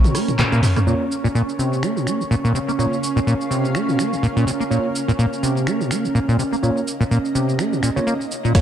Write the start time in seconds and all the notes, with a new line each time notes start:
Already playing: C#4 A#4 A#5 C#6
0.04 A#2, closed hi-hat, high tom, shaker
0.15 A#3, cross-stick, open hi-hat, shaker
0.28 A#2, closed hi-hat, mid tom, shaker
0.39 A#2, cross-stick, clap, closed hi-hat, mid tom, shaker
0.52 A#2, closed hi-hat, shaker
0.63 C3, mid tom, open hi-hat, shaker
0.76 A#3, cross-stick, closed hi-hat, mid tom, shaker
0.87 A#2 A#3 C#4 F4 C#5 C#6, shaker
1.12 A#4, shaker
1.24 A#2, shaker
1.35 A#2, shaker
1.49 shaker
1.55 C3 F5
1.59 shaker
1.73 shaker
1.83 A#3, finger snap, shaker
1.96 A#2, shaker
2.07 A#3, finger snap, shaker
2.20 A#2, shaker
2.31 A#2, shaker
2.44 A#2, shaker
2.55 C3, shaker
2.68 A#3, shaker
2.79 A#2 A#3 F4 C#5, shaker
2.93 shaker
3.04 shaker
3.16 A#2, shaker
3.27 A#2, shaker
3.41 shaker
3.51 C3, shaker
3.65 shaker
3.75 A#3, finger snap, shaker
3.88 A#2, shaker
3.99 A#3, finger snap, shaker
4.12 A#2, shaker
4.23 A#2, shaker
4.36 A#2, shaker
4.47 C3, shaker
4.60 A#3, shaker
4.71 A#2 A#3 F4 C#5, shaker
4.95 shaker
5.08 A#2, shaker
5.19 A#2, shaker
5.33 shaker
5.43 C3, shaker
5.57 shaker
5.67 A#3, finger snap, shaker
5.80 A#2 D#5, shaker
5.91 A#3, finger snap, shaker
6.04 A#2, shaker
6.15 A#2, shaker
6.28 A#2, shaker
6.39 C3, shaker
6.52 A#3, shaker
6.63 A#2 A#3 F4 C#5, shaker
6.77 shaker
6.88 shaker
7.00 A#2, shaker
7.11 A#2, shaker
7.25 shaker
7.35 C3, shaker
7.49 shaker
7.59 A#3, finger snap, shaker
7.72 A#2, shaker
7.83 A#2, finger snap, shaker
7.96 C#3 A#3 F4 C#5, shaker
8.07 A#3, shaker
8.21 shaker
8.31 shaker
8.44 A#2, shaker
8.55 A#3 F4 C#5, kick, cross-stick, closed hi-hat, crash, shaker